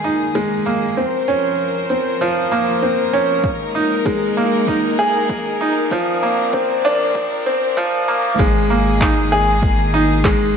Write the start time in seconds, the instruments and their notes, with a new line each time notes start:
Already playing: string section D#3 G#3 A#3 G#4, upright piano G#3 A#3 D#4 G#4
0.04 upright piano D#4, shaker
0.35 upright piano G#3, shaker
0.65 upright piano A#3, shaker
0.97 string section F3 A#4 C5, upright piano C4, shaker
1.28 upright piano C#4, shaker
1.43 shaker
1.59 shaker
1.90 upright piano C4, shaker
2.20 upright piano F3, shaker
2.51 upright piano A#3, shaker
2.83 upright piano C4, shaker
3.13 upright piano C#4, shaker
3.44 string section G#3 A#3 D#4, kick, shaker
3.75 upright piano D#4, shaker
3.91 shaker
4.06 upright piano G#3, kick, shaker
4.37 upright piano A#3, shaker
4.67 upright piano D#4, kick, shaker
4.98 upright piano G#4, shaker
5.29 kick, shaker
5.61 upright piano D#4, shaker
5.91 string section F3 C4 D4, upright piano F3, kick, shaker
6.23 upright piano A#3, shaker
6.38 shaker
6.53 upright piano C4, kick, shaker
6.69 shaker
6.84 upright piano D4, shaker
7.15 kick, shaker
7.46 upright piano C4, shaker
7.77 upright piano F3, kick, shaker
8.08 upright piano A#3, shaker
8.38 sub bass G#1, string section D#3 G#3 A#3 G#4, upright piano G#3, kick, shaker
8.70 upright piano A#3, shaker
9.01 upright piano D#4, kick, clap, shaker
9.32 upright piano G#4, shaker
9.48 shaker
9.63 kick, shaker
9.94 upright piano D#4, shaker
10.10 shaker
10.24 upright piano G#3, kick, clap, shaker